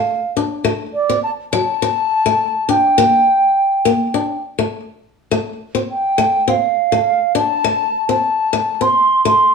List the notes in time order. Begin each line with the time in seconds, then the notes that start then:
Already playing: A3 F5
0.37 D4
0.65 A3
0.94 D5
1.09 C4
1.23 A5
1.52 F#3 A5
1.82 muted steel-string acoustic guitar stroke
2.26 A3
2.69 D4 G5
2.98 A#3
3.85 A#3
4.14 D4
4.59 A3
5.31 A3
5.75 C4
5.91 G5
6.18 A3
6.48 C4 F5
6.92 A3
7.35 D4 A5
7.64 A3
8.09 C4 A5
8.53 A3
8.81 C4 C6
9.25 A3 C6